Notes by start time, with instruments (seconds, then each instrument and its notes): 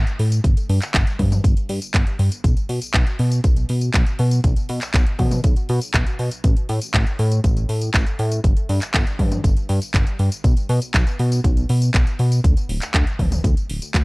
0.07 closed hi-hat, tambourine
0.19 analog synth bass A2, open hi-hat
0.32 closed hi-hat, tambourine
0.44 analog synth bass G1, kick, closed hi-hat, tambourine
0.57 closed hi-hat, tambourine
0.69 analog synth bass G2, open hi-hat
0.82 clap, closed hi-hat, tambourine
0.94 analog synth bass G1, kick, clap, closed hi-hat, tambourine
1.07 closed hi-hat, tambourine
1.19 analog synth bass G2, kick, open hi-hat, high tom
1.32 closed hi-hat, high tom, tambourine
1.44 analog synth bass G1, kick, closed hi-hat, tambourine
1.57 closed hi-hat, tambourine
1.69 analog synth bass G2, open hi-hat
1.82 closed hi-hat, tambourine
1.94 analog synth bass G1, kick, clap, closed hi-hat, tambourine
2.07 closed hi-hat, tambourine
2.19 analog synth bass G2, open hi-hat
2.32 closed hi-hat, tambourine
2.44 analog synth bass B1, kick, closed hi-hat, tambourine
2.57 closed hi-hat, tambourine
2.69 analog synth bass B2, open hi-hat
2.82 closed hi-hat, tambourine
2.94 analog synth bass B1, kick, clap, closed hi-hat, tambourine
3.07 closed hi-hat, tambourine
3.19 analog synth bass B2, open hi-hat
3.32 closed hi-hat, tambourine
3.44 analog synth bass B1, kick, closed hi-hat, tambourine
3.57 closed hi-hat, tambourine
3.69 analog synth bass B2, open hi-hat
3.81 closed hi-hat, tambourine
3.94 analog synth bass B1, kick, clap, closed hi-hat, tambourine
4.07 closed hi-hat, tambourine
4.19 analog synth bass B2, open hi-hat
4.31 closed hi-hat, tambourine
4.44 analog synth bass B1, kick, closed hi-hat, tambourine
4.57 closed hi-hat, tambourine
4.69 analog synth bass B2, open hi-hat
4.82 clap, closed hi-hat, tambourine
4.94 analog synth bass B1, kick, clap, closed hi-hat, tambourine
5.07 closed hi-hat, tambourine
5.19 analog synth bass B2, kick, open hi-hat, high tom
5.31 closed hi-hat, high tom, tambourine
5.44 analog synth bass B1, kick, closed hi-hat, tambourine
5.56 closed hi-hat, tambourine
5.69 analog synth bass B2, open hi-hat
5.81 closed hi-hat, tambourine
5.94 analog synth bass B1, kick, clap, closed hi-hat, tambourine
6.06 closed hi-hat, tambourine
6.19 analog synth bass B2, open hi-hat
6.31 closed hi-hat, tambourine
6.44 analog synth bass A1, kick, closed hi-hat, tambourine
6.57 closed hi-hat, tambourine
6.69 analog synth bass A2, open hi-hat
6.82 closed hi-hat, tambourine
6.94 analog synth bass A1, kick, clap, closed hi-hat
7.07 closed hi-hat, tambourine
7.19 analog synth bass A2, open hi-hat
7.32 closed hi-hat, tambourine
7.44 analog synth bass A1, kick, closed hi-hat, tambourine
7.57 closed hi-hat, tambourine
7.69 analog synth bass A2, open hi-hat
7.82 closed hi-hat, tambourine
7.94 analog synth bass A1, kick, clap, closed hi-hat, tambourine
8.07 closed hi-hat, tambourine
8.19 analog synth bass A2, open hi-hat
8.32 closed hi-hat, tambourine
8.44 analog synth bass G1, kick, closed hi-hat, tambourine
8.57 closed hi-hat, tambourine
8.69 analog synth bass G2, open hi-hat
8.82 clap, closed hi-hat, tambourine
8.94 analog synth bass G1, kick, clap, closed hi-hat, tambourine
9.07 closed hi-hat, tambourine
9.19 analog synth bass G2, kick, open hi-hat, high tom
9.32 closed hi-hat, high tom, tambourine
9.44 analog synth bass G1, kick, closed hi-hat, tambourine
9.57 closed hi-hat, tambourine
9.69 analog synth bass G2, open hi-hat
9.82 closed hi-hat, tambourine
9.94 analog synth bass G1, kick, clap, closed hi-hat, tambourine
10.07 closed hi-hat, tambourine
10.19 analog synth bass G2, open hi-hat
10.32 closed hi-hat, tambourine
10.44 analog synth bass B1, kick, closed hi-hat, tambourine
10.57 closed hi-hat, tambourine
10.69 analog synth bass B2, open hi-hat
10.82 closed hi-hat, tambourine
10.94 analog synth bass B1, kick, clap, closed hi-hat, tambourine
11.07 closed hi-hat, tambourine
11.19 analog synth bass B2, open hi-hat
11.32 closed hi-hat, tambourine
11.44 analog synth bass B1, kick, closed hi-hat, tambourine
11.57 closed hi-hat, tambourine
11.69 analog synth bass B2, open hi-hat
11.82 closed hi-hat, tambourine
11.94 analog synth bass B1, kick, clap, closed hi-hat, tambourine
12.07 closed hi-hat, tambourine
12.19 analog synth bass B2, open hi-hat
12.32 closed hi-hat, tambourine
12.44 analog synth bass D2, kick, closed hi-hat, tambourine
12.57 closed hi-hat, tambourine
12.69 analog synth bass D1, open hi-hat
12.82 clap, closed hi-hat, tambourine
12.94 analog synth bass D2, kick, clap, closed hi-hat, tambourine
13.07 closed hi-hat, tambourine
13.19 analog synth bass D1, kick, open hi-hat, high tom
13.32 closed hi-hat, high tom, tambourine
13.44 analog synth bass D2, kick, closed hi-hat, tambourine
13.57 closed hi-hat, tambourine
13.69 analog synth bass D1, open hi-hat
13.82 closed hi-hat, tambourine
13.94 analog synth bass D2, kick, clap, closed hi-hat, tambourine